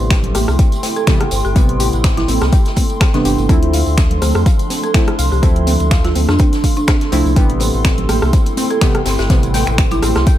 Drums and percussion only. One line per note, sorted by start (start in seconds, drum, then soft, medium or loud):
0.10 finger snap loud
0.10 kick loud
0.10 snare loud
0.10 closed hi-hat medium
0.10 tambourine medium
0.23 closed hi-hat medium
0.23 low conga loud
0.34 cross-stick medium
0.34 closed hi-hat medium
0.34 open hi-hat loud
0.34 tambourine loud
0.34 high conga loud
0.48 cross-stick medium
0.48 tambourine soft
0.59 kick loud
0.59 closed hi-hat medium
0.59 tambourine medium
0.72 closed hi-hat soft
0.72 tambourine soft
0.83 snare soft
0.83 closed hi-hat medium
0.83 open hi-hat loud
0.83 tambourine medium
0.83 muted conga medium
0.83 high conga medium
0.96 closed hi-hat soft
0.96 tambourine soft
1.07 finger snap loud
1.07 kick loud
1.07 snare loud
1.07 closed hi-hat medium
1.07 tambourine medium
1.21 cross-stick medium
1.21 closed hi-hat soft
1.31 closed hi-hat medium
1.31 open hi-hat medium
1.31 tambourine medium
1.45 tambourine soft
1.56 kick loud
1.56 closed hi-hat medium
1.56 tambourine medium
1.69 closed hi-hat soft
1.80 closed hi-hat medium
1.80 open hi-hat loud
1.80 tambourine medium
1.80 muted conga medium
1.93 closed hi-hat soft
1.93 tambourine soft
2.04 finger snap loud
2.04 kick loud
2.04 snare loud
2.04 closed hi-hat medium
2.04 tambourine soft
2.17 snare medium
2.17 closed hi-hat medium
2.17 low conga medium
2.28 closed hi-hat medium
2.28 open hi-hat medium
2.28 tambourine medium
2.28 high conga loud
2.41 cross-stick medium
2.41 snare medium
2.41 closed hi-hat soft
2.41 tambourine soft
2.41 muted conga medium
2.52 kick loud
2.52 closed hi-hat medium
2.52 tambourine medium
2.65 snare soft
2.65 closed hi-hat soft
2.65 tambourine soft
2.76 kick medium
2.76 closed hi-hat medium
2.76 open hi-hat loud
2.76 tambourine medium
2.76 muted conga medium
2.76 high conga medium
2.90 closed hi-hat soft
2.90 tambourine soft
3.00 finger snap loud
3.00 kick loud
3.00 cross-stick medium
3.00 snare loud
3.00 closed hi-hat medium
3.00 tambourine medium
3.13 snare soft
3.13 closed hi-hat soft
3.25 closed hi-hat medium
3.25 open hi-hat medium
3.25 tambourine medium
3.38 tambourine soft
3.38 muted conga medium
3.49 kick loud
3.49 closed hi-hat medium
3.49 tambourine medium
3.63 closed hi-hat medium
3.73 closed hi-hat medium
3.73 open hi-hat loud
3.73 tambourine medium
3.73 muted conga medium
3.86 tambourine soft
3.97 finger snap loud
3.97 kick loud
3.97 snare loud
3.97 closed hi-hat medium
3.97 tambourine medium
4.11 closed hi-hat medium
4.11 low conga medium
4.22 cross-stick medium
4.22 closed hi-hat medium
4.22 open hi-hat medium
4.22 tambourine loud
4.22 high conga medium
4.35 cross-stick medium
4.35 tambourine soft
4.46 kick loud
4.46 closed hi-hat medium
4.46 tambourine medium
4.59 closed hi-hat medium
4.59 tambourine soft
4.70 snare soft
4.70 closed hi-hat medium
4.70 open hi-hat loud
4.70 tambourine medium
4.70 muted conga medium
4.70 high conga medium
4.83 closed hi-hat soft
4.83 tambourine soft
4.94 finger snap loud
4.94 kick loud
4.94 snare loud
4.94 closed hi-hat medium
4.94 tambourine medium
5.08 cross-stick medium
5.08 closed hi-hat soft
5.18 closed hi-hat medium
5.18 open hi-hat medium
5.18 tambourine loud
5.32 tambourine soft
5.43 kick loud
5.43 closed hi-hat medium
5.43 tambourine medium
5.56 closed hi-hat medium
5.67 closed hi-hat medium
5.67 open hi-hat loud
5.67 tambourine medium
5.67 muted conga medium
5.80 closed hi-hat soft
5.80 tambourine soft
5.91 finger snap loud
5.91 kick loud
5.91 snare loud
5.91 closed hi-hat medium
5.91 tambourine medium
6.04 snare medium
6.04 closed hi-hat medium
6.04 low conga loud
6.15 closed hi-hat medium
6.15 open hi-hat medium
6.15 tambourine medium
6.15 high conga medium
6.29 cross-stick medium
6.29 snare medium
6.29 closed hi-hat soft
6.29 tambourine soft
6.29 muted conga medium
6.39 kick loud
6.39 closed hi-hat medium
6.39 tambourine soft
6.53 snare soft
6.53 closed hi-hat medium
6.53 tambourine soft
6.64 kick medium
6.64 closed hi-hat medium
6.64 open hi-hat loud
6.64 tambourine medium
6.64 muted conga medium
6.64 high conga medium
6.77 closed hi-hat soft
6.77 tambourine soft
6.88 finger snap loud
6.88 kick loud
6.88 cross-stick medium
6.88 snare loud
6.88 closed hi-hat medium
6.88 tambourine medium
7.01 snare soft
7.01 closed hi-hat medium
7.12 closed hi-hat medium
7.12 open hi-hat medium
7.12 tambourine medium
7.25 tambourine soft
7.25 muted conga medium
7.36 kick loud
7.36 closed hi-hat medium
7.36 tambourine medium
7.50 closed hi-hat medium
7.60 closed hi-hat medium
7.60 open hi-hat loud
7.60 tambourine medium
7.60 muted conga medium
7.74 tambourine soft
7.84 finger snap loud
7.84 kick loud
7.84 snare loud
7.84 closed hi-hat medium
7.84 tambourine medium
7.98 closed hi-hat medium
7.98 low conga loud
8.09 cross-stick medium
8.09 closed hi-hat medium
8.09 open hi-hat medium
8.09 tambourine medium
8.09 high conga medium
8.22 cross-stick medium
8.22 tambourine soft
8.33 kick loud
8.33 closed hi-hat medium
8.33 tambourine soft
8.46 closed hi-hat medium
8.46 tambourine soft
8.57 snare soft
8.57 closed hi-hat medium
8.57 open hi-hat loud
8.57 tambourine medium
8.57 muted conga medium
8.57 high conga medium
8.71 closed hi-hat soft
8.71 tambourine soft
8.81 finger snap loud
8.81 kick loud
8.81 snare loud
8.81 closed hi-hat medium
8.81 tambourine soft
8.95 cross-stick medium
8.95 closed hi-hat medium
9.06 snare loud
9.06 closed hi-hat medium
9.06 open hi-hat medium
9.06 tambourine loud
9.18 snare loud
9.18 closed hi-hat medium
9.18 tambourine soft
9.30 kick loud
9.30 snare loud
9.30 closed hi-hat medium
9.30 tambourine medium
9.43 closed hi-hat medium
9.43 tambourine soft
9.54 snare loud
9.54 closed hi-hat medium
9.54 open hi-hat loud
9.54 tambourine loud
9.54 muted conga medium
9.67 finger snap soft
9.67 closed hi-hat soft
9.67 tambourine soft
9.78 finger snap loud
9.78 kick loud
9.78 closed hi-hat medium
9.78 tambourine medium
9.91 closed hi-hat medium
9.91 tambourine soft
9.91 low conga loud
10.02 cross-stick medium
10.02 closed hi-hat medium
10.02 open hi-hat medium
10.02 tambourine medium
10.02 high conga medium
10.15 cross-stick medium
10.15 snare medium
10.15 closed hi-hat soft
10.15 tambourine soft
10.15 muted conga medium
10.27 kick loud
10.27 closed hi-hat medium
10.27 tambourine soft